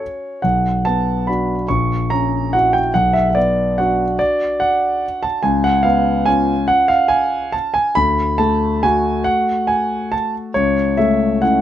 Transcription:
grand piano
Already playing: C#4 F#4 C#5
0.42 B1 F#5
0.85 B3 A5
1.27 D4 F#4 B5
1.68 A#1 C#6
2.10 C#4 A#5
2.53 E4 F#4 F#5
2.73 G5
2.94 B1 F#5
3.13 E5
3.30 E5
3.35 B3 D5
3.78 D4 F#4 F#5
4.19 D5
4.60 F#5
5.23 A5
5.43 C#2 G#5
5.64 F#5
5.83 B3 F5
6.26 C#4 F4 G#5
6.68 F#5
6.88 F5
7.08 G#5
7.52 A5
7.74 G#5
7.95 D2 B5
8.38 A3 A5
8.83 A3 F#4 G#5
9.24 F#5
9.67 G#5
10.12 A5
10.54 C#2 C#5
10.97 A3 E5
11.42 C#4 E4 F#5

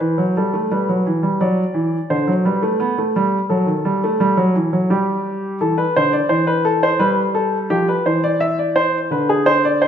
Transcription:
grand piano
0.00 E3 B4
0.18 F#3
0.37 G3 A4
0.53 A3
0.71 G3 B4
0.89 F#3
1.07 E3
1.23 G3
1.41 F#3 D5
1.74 E3
2.10 D3 C5
2.28 F#3
2.45 G3 B4
2.62 A3
2.80 B3
2.98 A3
3.16 G3
3.49 F#3 A4
3.66 D#3
3.85 G3
4.04 A3
4.20 G3
4.37 F#3
4.55 E3
4.73 F#3
4.90 G3 G4
5.61 E3 A4
5.78 B4
5.96 D3 C5
6.13 D5
6.29 E3 C5
6.47 B4
6.65 A4
6.83 C5
6.99 G3 B4
7.35 A4
7.70 F3 G4
7.89 B4
8.05 E3 C5
8.24 D5
8.40 E5
8.59 D5
8.76 C5
9.11 D3 B4
9.29 G#4
9.46 C5
9.65 D5
9.82 C5

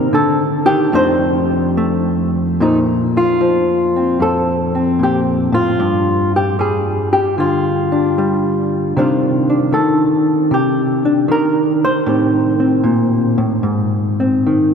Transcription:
hollow-body jazz guitar
Already playing: C3 D#3 A#3 D4 A#4
0.13 D3 A4
0.66 D#3 G4
0.93 F2 A3 D4 D#4 C5
1.77 A3
2.60 A#2 F3 A3 D#4
3.17 F4
3.41 F3
3.96 C4
4.20 F2 A4
4.75 C4
4.99 A#2
5.03 G4
5.52 A2 F4
5.79 G2
6.36 G4
6.59 G3 G#4
7.13 G4
7.38 D3 F4
7.92 D4
8.18 G3
8.97 C3 D#3 D4 F4 C5
9.50 D4
9.72 D#3 A4
10.51 C3 G4
11.05 D4
11.28 D#3 A#4
11.85 C5
12.06 A2 D#3 C4 G4
12.60 C4
12.84 A#2
13.38 A2
13.63 G#2
14.20 C4
14.46 D#3

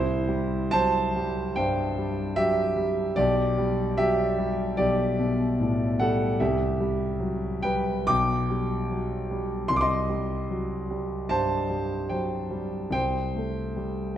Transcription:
grand piano
Already playing: C2 E4 C5
0.28 G3
0.71 F#3 C5 A5
1.16 G3
1.56 G2 C5 G5
1.98 G3
2.36 F#3 G4 E5
2.77 G3
3.16 B1 G4 D5
3.58 G3
3.98 F#3 G4 E5
4.39 G3
4.77 B1 G4 D5
5.19 B2
5.60 A2
6.00 G3 A4 F#5
6.40 C2 G4 E5
6.80 G3
7.20 F#3
7.62 G3 B4 G5
8.07 B1 G5 D6
8.50 G3
8.91 F#3
9.31 G3
9.68 C2 C6
9.76 D6
9.81 D#5 C6
10.09 G3
10.50 F#3
10.90 G3
11.29 G2 C5 A5
11.70 G3
12.09 F#3 C5 G5
12.51 G3
12.90 C2 C5 G5
13.35 A3
13.76 G3

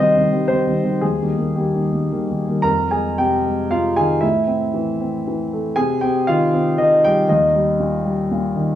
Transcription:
grand piano
Already playing: C3 C5 D#5
0.00 D#3 G3 C4
0.15 D#3 G3 C4
0.32 D#3 G3 C4
0.48 D#3 G3 C4 C5
0.67 D#3 G3 C4
0.83 D#3 G3 C4
1.01 D#2 G#4
1.21 D#3 G3 A#3
1.37 D#3 G3 A#3
1.56 D#3 G3 A#3 G4
1.74 D#3 G3 A#3
1.92 D#3 G3 A#3
2.12 D#3 G3 A#3
2.30 D#3 G3 A#3
2.48 D#3 G3 A#3
2.62 F2 A#4 A#5
2.91 G#3 G#4 G#5
3.18 C3 G4 G5
3.46 G#3
3.71 C3 F4 F5
3.96 D#3 G#4 G#5
4.21 A2 E4 E5
4.47 C4
4.74 E3
5.00 C4
5.27 E3
5.53 A3
5.76 C3 G#4 G#5
6.01 C4 G4 G5
6.27 D#3 F4 F5
6.54 C4
6.78 D#3 D#4 D#5
7.04 G3 G4 G5
7.29 D#2 D#4 D#5
7.56 G3
7.80 A#2
8.05 G3
8.31 A#2
8.56 D#3

